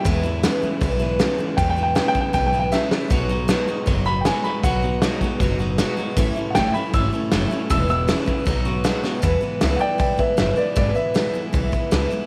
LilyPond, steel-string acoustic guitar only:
\new Staff \with { instrumentName = "Steel-string acoustic guitar" } { \time 4/4 \key e \major \tempo 4 = 157 <e, b, e gis b e'>8 <e gis b e'>8 <e, b, e gis b e'>8 <e gis b e'>8 <e gis b e'>8 <e gis b e'>8 <e, b, e gis b e'>8 <e gis b e'>8 | <e, b, e gis b e'>8 <e gis b e'>8 <e, b, e gis b e'>8 <e gis b e'>8 <e gis b e'>8 <e gis b e'>8 <e, b, e gis b e'>8 <e gis b e'>8 | <b, fis b dis' fis'>8 <b dis' fis'>8 <b, fis b dis' fis'>8 <b dis' fis'>8 <fis b dis' fis'>8 <b dis' fis'>8 <b, fis b dis' fis'>8 <b dis' fis'>8 | <b, fis b dis' fis'>8 <b dis' fis'>8 <b, fis b dis' fis'>8 <b dis' fis'>8 <fis b dis' fis'>8 <b dis' fis'>8 <b, fis b dis' fis'>8 <b dis' fis'>8 |
<a, e a cis' e'>8 <a cis' e'>8 <a, e a cis' e'>8 <a cis' e'>8 <e a cis' e'>8 <a cis' e'>8 <a, e a cis' e'>8 <a cis' e'>8 | <e, b, e gis b e'>8 <e gis b e'>8 <e, b, e gis b e'>8 <e gis b e'>8 <fis b dis' fis'>8 <b dis' fis'>8 <b, fis b dis' fis'>8 <b dis' fis'>8 | <e, b, e gis b e'>8 <e gis b e'>8 <e, b, e gis b e'>8 <e gis b e'>8 <e gis b e'>8 <e gis b e'>8 <e, b, e gis b e'>8 <e gis b e'>8 | <e, b, e gis b e'>8 <e gis b e'>8 <e, b, e gis b e'>8 <e gis b e'>8 <e gis b e'>8 <e gis b e'>8 <e, b, e gis b e'>8 <e gis b e'>8 | }